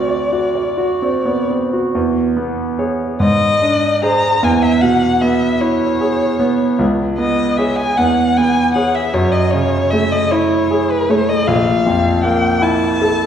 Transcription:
Already playing: D2 C4 F#4 D5
0.08 D5
0.33 F#4
0.56 D5
0.78 F#4
1.02 C4
1.25 B3
1.50 C4
1.73 F#4
1.95 E2
2.37 B3
2.79 G#4 C#5
3.20 G#2 D#5
3.62 D4
4.03 G#4 C5 A#5
4.43 E2 G#5
4.62 E5
4.82 B2 F#5
5.22 B3 E5
5.61 E4 C#5
6.01 G#4
6.39 B3
6.79 C#2
7.18 B3 D#5
7.57 G#4 C#5 E5
7.77 G#5
7.97 E2 F#5
8.37 B3 G#5
8.74 G#4 C#5 F#5
8.95 E5
9.14 F#2 C#5
9.32 D#5
9.51 C#3 C#5
9.91 A3 E5
10.12 D#5
10.31 E4 C#5
10.71 G#4
10.91 B4
11.10 A3 C#5
11.29 D#5
11.47 A#1 F5
11.86 F2
12.24 A#3 G5
12.62 E4 A5
13.02 A4

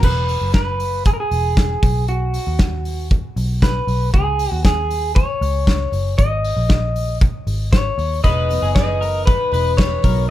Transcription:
0.03 E1 B4, kick, crash
0.29 open hi-hat
0.41 F#1
0.54 B4, kick, snare, closed hi-hat
0.80 open hi-hat
1.05 G#4, kick, closed hi-hat
1.14 A#4
1.20 G#4
1.31 E1, open hi-hat
1.57 kick, snare, closed hi-hat
1.83 B1, kick, open hi-hat
2.08 F#4, closed hi-hat
2.34 open hi-hat
2.47 D#2
2.59 kick, snare, closed hi-hat
2.85 open hi-hat
3.11 kick, closed hi-hat
3.36 B1, open hi-hat
3.62 B4, kick, snare, closed hi-hat
3.87 B1, open hi-hat
4.14 C#2 G#4, kick, closed hi-hat
4.39 open hi-hat
4.52 D#2
4.65 G#4, kick, snare, closed hi-hat
4.91 open hi-hat
5.15 C#5, kick, closed hi-hat
5.41 C#2, open hi-hat
5.67 kick, snare, closed hi-hat
5.92 F#1, open hi-hat
6.18 G#1 D#5, kick, closed hi-hat
6.44 open hi-hat
6.57 A#1
6.70 kick, snare, closed hi-hat
6.96 open hi-hat
7.21 kick, closed hi-hat
7.47 G#1, open hi-hat
7.72 C#5, kick, snare, closed hi-hat
7.98 D#2, open hi-hat
8.23 E1 E3 G#3 B3 D#4 B4 D#5, kick, closed hi-hat
8.49 B3 D#4 B4, open hi-hat
8.62 F#1 G#4
8.75 E3 G#3 B3 D#4 B4 D#5, kick, snare, closed hi-hat
9.01 B3 D#4 A#4 B4, open hi-hat
9.26 G#3 B3 D#4 B4, kick, closed hi-hat
9.30 B4
9.52 E1 B3 D#4 B4, open hi-hat
9.77 E3 G#3 B3 D#4 B4 C#5, kick, snare, closed hi-hat
10.02 B1 F#3 B3 D#4 A#4 B4, kick, open hi-hat

